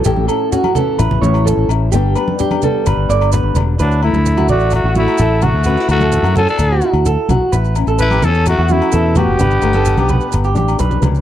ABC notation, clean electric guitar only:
X:1
M:4/4
L:1/16
Q:1/4=129
K:D
V:1 name="Clean electric guitar"
G2 A2 F2 A2 B2 c2 A2 z2 | G2 B2 G2 A2 B2 d2 B2 z2 | B2 z3 F d2 z F F2 A2 F2 | B2 z A2 F A2 z F F2 A2 F2 |
B2 z A2 G A2 z F F2 A2 F2 | B2 z A2 G B2 z G G2 B2 z2 |]